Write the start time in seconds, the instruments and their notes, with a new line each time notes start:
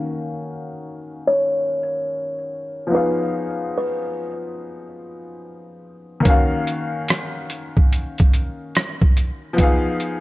Already playing: upright piano D#3 A#3 C#4 F#4 F5
1.27 kalimba C#5
2.87 upright piano F3 B3
2.91 upright piano D#4 G#4, kalimba B4
2.96 upright piano F5
3.78 kalimba B4
6.20 upright piano D#3 A#3
6.25 upright piano C#4 F#4, kick, closed hi-hat
6.30 upright piano F5
6.67 closed hi-hat
7.08 cross-stick, closed hi-hat
7.50 closed hi-hat
7.77 kick
7.93 closed hi-hat
8.18 kick, closed hi-hat
8.34 closed hi-hat
8.75 cross-stick, closed hi-hat
9.02 kick
9.17 closed hi-hat
9.53 upright piano F3 B3
9.58 upright piano D#4 G#4, kick, closed hi-hat
9.62 upright piano F5
10.00 closed hi-hat